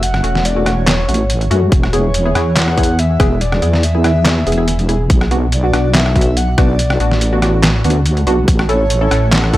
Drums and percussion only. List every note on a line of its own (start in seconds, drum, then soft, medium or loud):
0.03 closed hi-hat medium
0.14 cross-stick medium
0.24 closed hi-hat medium
0.35 snare soft
0.45 closed hi-hat medium
0.66 cross-stick medium
0.66 closed hi-hat medium
0.87 snare loud
0.87 clap medium
0.87 closed hi-hat medium
1.09 closed hi-hat soft
1.14 closed hi-hat medium
1.30 closed hi-hat medium
1.41 closed hi-hat soft
1.51 closed hi-hat medium
1.72 kick loud
1.72 closed hi-hat medium
1.83 cross-stick medium
1.93 closed hi-hat medium
2.14 closed hi-hat medium
2.35 cross-stick medium
2.35 closed hi-hat soft
2.57 snare loud
2.57 clap medium
2.57 closed hi-hat medium
2.68 cross-stick medium
2.78 kick medium
2.78 closed hi-hat soft
2.83 closed hi-hat medium
2.99 closed hi-hat medium
3.20 kick loud
3.20 cross-stick medium
3.20 closed hi-hat soft
3.41 closed hi-hat medium
3.52 cross-stick medium
3.62 closed hi-hat medium
3.73 snare soft
3.83 closed hi-hat medium
4.04 cross-stick medium
4.04 closed hi-hat soft
4.26 snare loud
4.26 clap medium
4.26 closed hi-hat medium
4.47 closed hi-hat soft
4.52 closed hi-hat medium
4.68 closed hi-hat medium
4.79 closed hi-hat soft
4.89 closed hi-hat medium
5.10 kick loud
5.10 closed hi-hat medium
5.21 cross-stick medium
5.31 closed hi-hat medium
5.52 closed hi-hat medium
5.74 cross-stick medium
5.74 closed hi-hat soft
5.95 snare loud
5.95 clap medium
5.95 closed hi-hat medium
6.06 cross-stick medium
6.16 kick medium
6.16 closed hi-hat soft
6.21 closed hi-hat medium
6.37 closed hi-hat medium
6.58 kick loud
6.58 cross-stick medium
6.58 closed hi-hat medium
6.79 closed hi-hat medium
6.90 cross-stick medium
7.00 closed hi-hat medium
7.11 snare soft
7.21 closed hi-hat medium
7.42 cross-stick medium
7.42 closed hi-hat medium
7.63 snare loud
7.63 clap medium
7.63 closed hi-hat medium
7.84 closed hi-hat soft
7.90 closed hi-hat medium
8.06 closed hi-hat medium
8.17 closed hi-hat soft
8.27 closed hi-hat medium
8.48 kick loud
8.48 closed hi-hat medium
8.59 cross-stick medium
8.69 closed hi-hat medium
8.90 closed hi-hat medium
9.11 cross-stick medium
9.11 closed hi-hat medium
9.32 snare loud
9.32 clap medium
9.32 closed hi-hat medium
9.44 cross-stick medium
9.53 kick medium
9.53 closed hi-hat soft